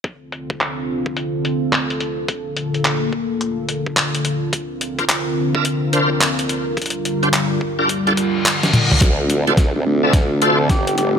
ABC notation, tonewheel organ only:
X:1
M:4/4
L:1/16
Q:"Swing 16ths" 1/4=107
K:Dm
V:1 name="Tonewheel organ"
z16 | z16 | z3 [DFBc] z3 [DFBe] z2 [DFBc] z4 z | z3 [DFGc] z3 [DFGB] z [DFGA] z6 |
z3 [DFAc] z3 [DFAe] z2 [DFAc] z4 z |]